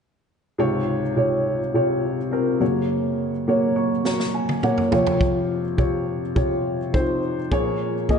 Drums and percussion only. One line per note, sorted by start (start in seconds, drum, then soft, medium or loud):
4.05 snare soft
4.20 snare soft
4.49 high tom medium
4.63 mid tom medium
4.78 mid tom medium
4.92 floor tom medium
5.07 floor tom medium
5.21 kick medium
5.78 kick medium
6.36 kick medium
6.94 kick medium
7.52 kick medium
8.09 kick medium